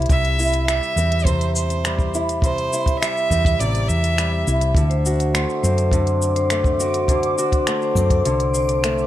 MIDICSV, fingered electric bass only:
0, 0, Header, 1, 2, 480
1, 0, Start_track
1, 0, Key_signature, 0, "major"
1, 0, Tempo, 582524
1, 84, Time_signature, 4, 2, 24, 8
1, 7472, End_track
2, 0, Start_track
2, 0, Title_t, "Fingered electric bass"
2, 0, Program_c, 0, 33
2, 79, Note_on_c, 0, 36, 92
2, 649, Note_off_c, 0, 36, 0
2, 792, Note_on_c, 0, 40, 87
2, 2205, Note_off_c, 0, 40, 0
2, 2724, Note_on_c, 0, 40, 85
2, 2923, Note_off_c, 0, 40, 0
2, 2961, Note_on_c, 0, 33, 73
2, 3197, Note_off_c, 0, 33, 0
2, 3202, Note_on_c, 0, 40, 77
2, 3650, Note_off_c, 0, 40, 0
2, 3686, Note_on_c, 0, 36, 96
2, 3884, Note_off_c, 0, 36, 0
2, 3915, Note_on_c, 0, 38, 87
2, 4486, Note_off_c, 0, 38, 0
2, 4642, Note_on_c, 0, 42, 87
2, 6050, Note_off_c, 0, 42, 0
2, 6553, Note_on_c, 0, 42, 90
2, 6757, Note_off_c, 0, 42, 0
2, 6804, Note_on_c, 0, 36, 73
2, 7472, Note_off_c, 0, 36, 0
2, 7472, End_track
0, 0, End_of_file